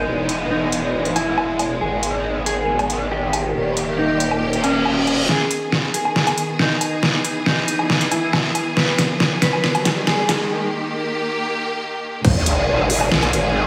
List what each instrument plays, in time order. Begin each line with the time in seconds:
Already playing: string section G#3 B3, clean electric guitar D#4
0.07 wobble bass E1, string section E3
0.29 closed hi-hat
0.51 clean electric guitar D#4
0.72 closed hi-hat
1.05 closed hi-hat
1.16 clean electric guitar E4, closed hi-hat, low woodblock
1.38 low woodblock
1.59 closed hi-hat, low woodblock
1.81 wobble bass G#1, string section D#3 B3, clean electric guitar G#4
2.03 closed hi-hat
2.46 clean electric guitar G#4, closed hi-hat
2.79 closed hi-hat, low woodblock
2.90 closed hi-hat
3.12 clean electric guitar G4
3.33 closed hi-hat, low woodblock
3.55 wobble bass D#1, string section A#3 G4
3.77 closed hi-hat
3.98 clean electric guitar D#4
4.20 closed hi-hat
4.31 low woodblock
4.42 reverse cymbal
4.53 closed hi-hat
4.64 clean electric guitar C#4, closed hi-hat, low woodblock
4.85 low woodblock
5.07 closed hi-hat, low woodblock
5.29 string section D#3 B3 G#4, clean electric guitar G#4, snare, riser
5.51 closed hi-hat
5.72 snare
5.94 clean electric guitar G#4, closed hi-hat
6.05 low woodblock
6.16 snare
6.27 closed hi-hat, low woodblock
6.38 closed hi-hat
6.59 clean electric guitar D#4, snare
6.81 closed hi-hat, low woodblock
7.03 string section E3, snare
7.25 closed hi-hat
7.46 clean electric guitar D#4, snare
7.68 closed hi-hat
7.79 low woodblock
7.90 snare
8.01 closed hi-hat
8.12 clean electric guitar E4, closed hi-hat, low woodblock
8.33 snare, low woodblock
8.55 closed hi-hat, low woodblock
8.77 string section D#3, clean electric guitar B4, snare
8.98 snare, closed hi-hat
9.20 snare
9.42 clean electric guitar B4, snare, closed hi-hat
9.53 low woodblock
9.64 snare
9.75 closed hi-hat, low woodblock
9.85 snare, closed hi-hat
10.07 clean electric guitar G#4, snare
10.29 snare, closed hi-hat, low woodblock
10.51 string section A#3 G4
12.25 wobble bass G#1, string section D#3 G#3 G#4, kick, crash, sub drop
12.46 closed hi-hat
12.68 wobble bass G#1
12.90 open hi-hat
13.01 low woodblock
13.12 wobble bass B1, snare
13.23 closed hi-hat, low woodblock
13.33 wobble bass G#1, closed hi-hat